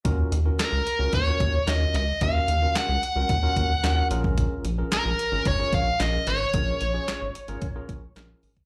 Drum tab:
HH |x-x-x-x-x-x-x-x-|x-x-x-x-x-x-x-x-|x-x-x-x-x-x-x-x-|x-x-x-xxx-x-x-ox|
CP |----x-------x---|----x-------x---|----x-------x---|----x-------x---|
SD |----o-------o---|----o-------o---|----o-------o---|----o-------o---|
BD |o-------o-o-----|o-------o-o----o|o-------o-o-----|o-------o-o----o|